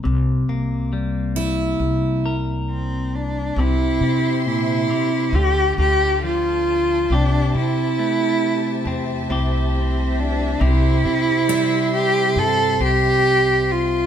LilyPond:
<<
  \new Staff \with { instrumentName = "String section" } { \time 4/4 \key c \mixolydian \tempo 4 = 68 << { r1 | c'''2 a''2~ | a''1 | c'''1 | } \\ { r1 | <g' c'' e''>2 <f' a' d''>2 | <g' c'' e''>1~ | <g' c'' e''>1 | } >> }
  \new Staff \with { instrumentName = "Cello" } { \time 4/4 \key c \mixolydian r2. c'8 d'8 | e'4 e'4 g'8 g'8 f'4 | d'8 e'2 r8 c'8 d'8 | e'4. g'8 a'8 g'4 f'8 | }
  \new Staff \with { instrumentName = "Steel-string acoustic guitar" } { \time 4/4 \key c \mixolydian r4. e'4 r4. | r1 | r1 | r4 e'4 r2 | }
  \new Staff \with { instrumentName = "Clean electric guitar" } { \time 4/4 \key c \mixolydian << { bes8 bes2 bes'4. | c'8 c'4. f'8 f'4. | g'8 c'4. c'8 <c' e' g'>4. | c'8 c'4. c'8 c'4. | } \\ { c4 g2. | c4 bes,8 c8 d4 f4 | c4 a2. | c4 g2. | } >> }
  \new Staff \with { instrumentName = "Upright bass" } { \clef bass \time 4/4 \key c \mixolydian c,8 c,4. c,2 | c,8 c4. d,8 d,4. | c,8 c4. e,8 c,4. | c,8 r4. g,8 c,4. | }
>>